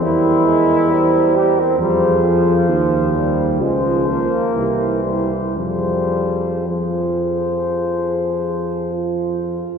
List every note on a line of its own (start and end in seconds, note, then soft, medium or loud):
0.00 1.76 E2 medium
0.00 0.47 G3 medium
0.00 1.35 E4 medium
0.00 0.90 A#4 medium
0.00 0.89 C5 medium
0.45 0.92 G#3 medium
0.90 1.62 G3 medium
0.90 1.78 A#4 medium
0.90 1.78 C5 medium
1.36 1.58 G4 medium
1.58 1.80 C4 medium
1.79 2.70 F2 medium
1.79 3.56 F3 medium
1.79 2.24 G3 medium
1.79 2.65 G#4 soft
1.79 3.57 C5 medium
2.24 3.15 F3 medium
2.69 3.62 D#2 medium
2.69 3.60 G4 soft
3.15 3.61 G3 medium
3.60 4.38 C#2 soft
3.60 4.56 F3 soft
3.60 4.07 G#3 medium
3.60 4.55 F4 soft
3.60 4.53 C5 soft
4.08 5.04 A#3 medium
4.55 5.58 C2 soft
4.55 5.56 E3 soft
4.55 5.39 G4 soft
4.55 5.54 C5 soft
5.04 5.55 G3 soft
5.56 9.65 F2 soft
5.56 6.65 F3 soft
5.56 6.65 G3 medium
5.56 6.65 G#4 soft
5.56 6.66 C5 soft
6.67 9.49 F3 soft
6.67 9.61 F3 soft
6.67 8.90 G#4 soft
6.67 9.62 C5 soft
8.94 9.78 F4 soft